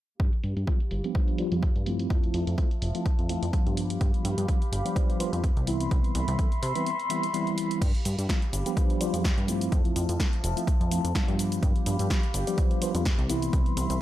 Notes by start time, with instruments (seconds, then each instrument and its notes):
0.20 analog synth bass G2, string section G4 F5 B5, kick, closed hi-hat
0.33 closed hi-hat
0.44 analog synth bass G2, open hi-hat
0.57 analog synth bass G2, closed hi-hat
0.67 tine electric piano F3 G3 B3 D4 F4, kick, closed hi-hat
0.80 closed hi-hat
0.91 analog synth bass G1, open hi-hat
1.04 tine electric piano F3 G3 B3 D4 G4, closed hi-hat
1.15 kick, closed hi-hat
1.28 closed hi-hat
1.38 tine electric piano F3 G3 B3 D4 F4, open hi-hat
1.52 analog synth bass F2, tine electric piano F3 G3 B3 D4 F4, closed hi-hat
1.63 kick, closed hi-hat
1.76 analog synth bass G2, closed hi-hat
1.86 tine electric piano F3 A3 C4 E4 F4, open hi-hat
1.99 closed hi-hat
2.10 analog synth bass F2, string section F3 E5 A5, kick, closed hi-hat
2.23 analog synth bass F2, closed hi-hat
2.34 analog synth bass F2, open hi-hat
2.47 analog synth bass F2, closed hi-hat
2.58 tine electric piano F3 A3 C4 E4 F4, kick, closed hi-hat
2.71 closed hi-hat
2.82 analog synth bass F1, open hi-hat
2.94 tine electric piano F3 A3 C4 E4 F4, closed hi-hat
3.06 kick, closed hi-hat
3.19 analog synth bass F2, closed hi-hat
3.29 tine electric piano F3 A3 C4 E4 F4, open hi-hat
3.42 analog synth bass F2, closed hi-hat
3.53 tine electric piano F3 G3 B3 D4 F4, kick, closed hi-hat
3.66 analog synth bass G2, closed hi-hat
3.77 string section G4 F5 B5, open hi-hat
3.90 closed hi-hat
4.01 analog synth bass G2, kick, closed hi-hat
4.14 closed hi-hat
4.24 analog synth bass G2, open hi-hat, maracas
4.38 analog synth bass G2, closed hi-hat, maracas
4.48 tine electric piano F3 G3 B3 D4 F4, kick, closed hi-hat
4.62 closed hi-hat
4.72 analog synth bass G1, open hi-hat, maracas
4.85 tine electric piano F3 G3 B3 D4 G4, closed hi-hat, maracas
4.95 tine electric piano F3 G3 B3 D4 F4, kick, closed hi-hat
5.10 closed hi-hat
5.19 tine electric piano F3 G3 B3 D4 F4, open hi-hat, maracas
5.32 analog synth bass F2, tine electric piano F3 G3 B3 D4 F4, closed hi-hat, maracas
5.44 kick, closed hi-hat
5.57 analog synth bass C2, closed hi-hat
5.66 tine electric piano E3 G3 B3 C4 E4, string section E5 B5 C6, open hi-hat, maracas
5.80 closed hi-hat, maracas
5.91 analog synth bass C2, kick, closed hi-hat
6.04 closed hi-hat
6.15 analog synth bass C2, open hi-hat, maracas
6.28 analog synth bass C2, closed hi-hat, maracas
6.38 tine electric piano E3 G3 B3 C4 A4, kick, closed hi-hat
6.52 closed hi-hat
6.62 analog synth bass C3, open hi-hat, maracas
6.75 tine electric piano E3 G3 B3 C4 E4, closed hi-hat, maracas
6.86 closed hi-hat, maracas
7.00 closed hi-hat
7.10 tine electric piano E3 G3 B3 C4 E4, open hi-hat, maracas
7.23 closed hi-hat, maracas
7.33 tine electric piano E3 G3 B3 C4 E4, closed hi-hat, maracas
7.47 closed hi-hat
7.57 open hi-hat, maracas
7.70 closed hi-hat, maracas
7.81 analog synth bass G2, string section G4 F5 B5, kick, closed hi-hat, crash, shaker
7.95 closed hi-hat
8.05 analog synth bass G2, open hi-hat, maracas, shaker
8.18 analog synth bass G2, closed hi-hat, shaker
8.29 tine electric piano F3 G3 B3 D4 F4, kick, snare, closed hi-hat, shaker
8.42 closed hi-hat
8.53 analog synth bass G1, open hi-hat, maracas, shaker
8.66 tine electric piano F3 G3 B3 D4 G4, closed hi-hat, shaker
8.76 tine electric piano F3 G3 B3 D4, kick, closed hi-hat, shaker
8.90 closed hi-hat
9.00 tine electric piano F3 G3 B3 D4 F4, open hi-hat, maracas, shaker
9.13 analog synth bass F2, tine electric piano F3 G3 B3 D4 F4, closed hi-hat, shaker
9.24 kick, snare, closed hi-hat, shaker
9.37 analog synth bass G2, closed hi-hat
9.47 tine electric piano F3 A3 C4 E4 F4, open hi-hat, shaker, maracas
9.61 closed hi-hat, maracas, shaker
9.72 analog synth bass F2, string section F3 E5 A5, kick, closed hi-hat, shaker
9.85 analog synth bass F2, closed hi-hat
9.96 analog synth bass F2, open hi-hat, maracas, shaker
10.09 analog synth bass F2, closed hi-hat, shaker
10.19 tine electric piano F3 A3 C4 E4 F4, kick, snare, closed hi-hat, shaker
10.33 closed hi-hat
10.44 analog synth bass F1, open hi-hat, maracas, shaker
10.56 tine electric piano F3 A3 C4 E4 F4, closed hi-hat, maracas, shaker
10.67 kick, closed hi-hat, shaker
10.81 analog synth bass F2, closed hi-hat
10.91 tine electric piano F3 A3 C4 E4 F4, open hi-hat, maracas, shaker
11.04 analog synth bass F2, closed hi-hat, shaker
11.14 analog synth bass G2, tine electric piano F3 G3 B3 D4 F4, kick, snare, closed hi-hat, shaker
11.28 analog synth bass G2, closed hi-hat
11.39 string section G4 F5 B5, open hi-hat, maracas, shaker
11.52 closed hi-hat, maracas, shaker
11.63 analog synth bass G2, kick, closed hi-hat, shaker
11.76 closed hi-hat
11.86 analog synth bass G2, open hi-hat, shaker, maracas
11.99 analog synth bass G2, closed hi-hat, shaker, maracas
12.10 tine electric piano F3 G3 B3 D4 F4, kick, snare, closed hi-hat, shaker
12.23 closed hi-hat
12.34 analog synth bass G1, open hi-hat, maracas, shaker
12.47 tine electric piano F3 G3 B3 D4 G4, closed hi-hat, shaker
12.57 tine electric piano F3 G3 D4 F4, kick, closed hi-hat, shaker
12.71 closed hi-hat
12.82 tine electric piano F3 G3 B3 D4 F4, open hi-hat, maracas, shaker
12.94 analog synth bass F2, tine electric piano F3 G3 B3 D4 F4, closed hi-hat, maracas, shaker
13.05 kick, snare, closed hi-hat, shaker
13.18 analog synth bass C2, closed hi-hat
13.28 tine electric piano E3 G3 B3 C4 E4, string section E5 B5 C6, open hi-hat, maracas, shaker
13.42 closed hi-hat, maracas, shaker
13.53 analog synth bass C2, kick, closed hi-hat, shaker
13.66 closed hi-hat
13.77 analog synth bass C2, open hi-hat, shaker, maracas
13.90 analog synth bass C2, closed hi-hat, maracas, shaker